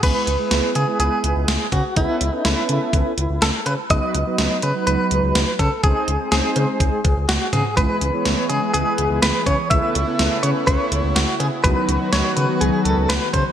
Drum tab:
CC |x-------|--------|--------|--------|
HH |xxxxxxxx|xxxxxxxx|xxxxxxxx|xxxxxxxx|
CB |-------x|-------x|-------x|---x-x-x|
SD |--o---o-|--o---o-|--o---o-|--o---o-|
T2 |--------|--------|--------|-------o|
BD |o------o|o---o---|o------o|o---oo--|

CC |--------|--------|--------|
HH |xxxxxxxx|xxxxxxxx|xxxxxxxx|
CB |-------x|-------x|-------x|
SD |--o---o-|--o---o-|--o---o-|
T2 |--------|--------|--------|
BD |o------o|o---o---|o------o|